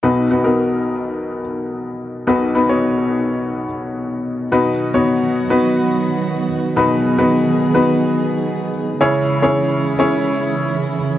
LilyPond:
<<
  \new Staff \with { instrumentName = "Upright piano" } { \time 4/4 \key b \major \tempo 4 = 107 <b dis' fis' b'>8 <b dis' fis' b'>16 <b dis' fis' ais'>4.~ <b dis' fis' ais'>16 r4. | <b dis' fis' b'>8 <b dis' fis' b'>16 <b dis' fis' cis''>4.~ <b dis' fis' cis''>16 r4. | <b dis' fis' b'>8. <b dis' fis' cis''>8. r16 <b dis' fis' b'>4.~ <b dis' fis' b'>16 r8 | <b dis' fis' b'>8. <b dis' fis' b'>8. r16 <b dis' fis' b'>4.~ <b dis' fis' b'>16 r8 |
<cis' e' gis' cis''>8. <cis' e' gis' cis''>8. r16 <cis' e' gis' cis''>4.~ <cis' e' gis' cis''>16 r8 | }
  \new Staff \with { instrumentName = "Upright piano" } { \clef bass \time 4/4 \key b \major <b,, b,>1 | <b,, b,>1 | b,4. r2 r8 | b,4. r2 r8 |
cis4. r2 r8 | }
  \new Staff \with { instrumentName = "String section" } { \clef bass \time 4/4 \key b \major << { r1 | r1 | fis'1 | gis'1 |
e'1 | } \\ { r1 | r1 | <dis fis b>1~ | <dis fis b>1 |
<cis e gis>1 | } >> }
>>